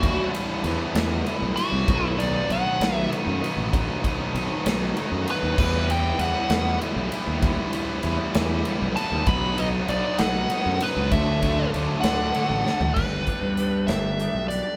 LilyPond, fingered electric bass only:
\new Staff \with { instrumentName = "Fingered electric bass" } { \clef bass \time 6/8 \key e \minor \tempo 4. = 65 dis,16 r8. e,16 r16 e,8 r16 b,,16 r16 c,16 | b,,4 b,,16 r16 b,,8 r16 fis,16 r16 a,,16~ | a,,16 r8. b,,16 r16 b,,8 r16 fis,16 r16 dis,16 | e,4 e,16 r16 e,8 r16 b,,16 r16 dis,16~ |
dis,16 r8. e,16 r16 e,8 r16 b,,16 r16 dis,16 | b,,4 b,,16 r16 b,,8 r16 fis,16 r16 cis,16 | d,4 d,16 r16 d,8 r16 a,,16 r16 d,16 | \key g \major g,,8 r16 g,8. g,,8. b,,8 r16 | }